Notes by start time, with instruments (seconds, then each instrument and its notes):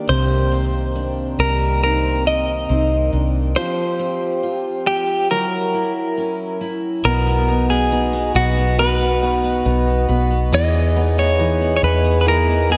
Already playing: french horn section D#3 A#3, steel-string acoustic guitar A#3 D4, grand piano D4 D#4 G4
0.09 fingered electric bass C2, steel-string acoustic guitar C3 G4, grand piano C3, french horn section C4, clean electric guitar C5
0.52 steel-string acoustic guitar C4
0.95 steel-string acoustic guitar D4
1.39 fingered electric bass C2, steel-string acoustic guitar G4, clean electric guitar A#4
1.82 grand piano C4 D#4, steel-string acoustic guitar C4, clean electric guitar A#4
2.27 clean electric guitar D#5
2.69 fingered electric bass C2, steel-string acoustic guitar C4, grand piano C4 D#4
3.12 fingered electric bass C2, steel-string acoustic guitar D4
3.56 steel-string acoustic guitar F3 G4, french horn section F3 G4, grand piano F3, clean electric guitar C5
3.99 steel-string acoustic guitar C4
4.43 steel-string acoustic guitar F4
4.87 steel-string acoustic guitar G4, clean electric guitar G4
5.31 steel-string acoustic guitar F#3, grand piano F#3, french horn section F#3 E4 A#4, clean electric guitar A#4
5.74 steel-string acoustic guitar E4
6.17 steel-string acoustic guitar C#4
6.61 steel-string acoustic guitar E4
7.04 fingered electric bass B1, steel-string acoustic guitar B2, french horn section B3 F#4 D#5, grand piano B3, clean electric guitar A#4
7.27 steel-string acoustic guitar B3
7.48 grand piano B3, steel-string acoustic guitar D#4
7.70 steel-string acoustic guitar B3, clean electric guitar G#4
7.92 grand piano B3, steel-string acoustic guitar D#4
8.13 steel-string acoustic guitar B3
8.34 fingered electric bass B1, grand piano B3, clean electric guitar F#4, steel-string acoustic guitar B4
8.57 steel-string acoustic guitar B3
8.78 steel-string acoustic guitar B2 B4, grand piano B3, clean electric guitar B4
9.01 steel-string acoustic guitar B3
9.22 grand piano B3, steel-string acoustic guitar D#4
9.44 steel-string acoustic guitar B3
9.65 fingered electric bass B1, grand piano B3, steel-string acoustic guitar D#4
9.87 steel-string acoustic guitar B3
10.08 fingered electric bass B1, grand piano B3, steel-string acoustic guitar B4
10.31 steel-string acoustic guitar B3
10.52 fingered electric bass E2, grand piano E3, steel-string acoustic guitar E3 B4, french horn section E3 G#4, clean electric guitar D#5
10.74 steel-string acoustic guitar B3
10.96 grand piano B3, steel-string acoustic guitar D#4
11.18 steel-string acoustic guitar B3, clean electric guitar C#5
11.39 grand piano E3, steel-string acoustic guitar D#4
11.61 steel-string acoustic guitar B3
11.76 clean electric guitar C#5
11.83 fingered electric bass E2, grand piano B3, steel-string acoustic guitar B4, clean electric guitar B4
12.04 steel-string acoustic guitar B3
12.21 clean electric guitar B4
12.26 steel-string acoustic guitar E3, grand piano E3, clean electric guitar A#4
12.48 steel-string acoustic guitar B3
12.69 grand piano B3, steel-string acoustic guitar D#4, clean electric guitar G#4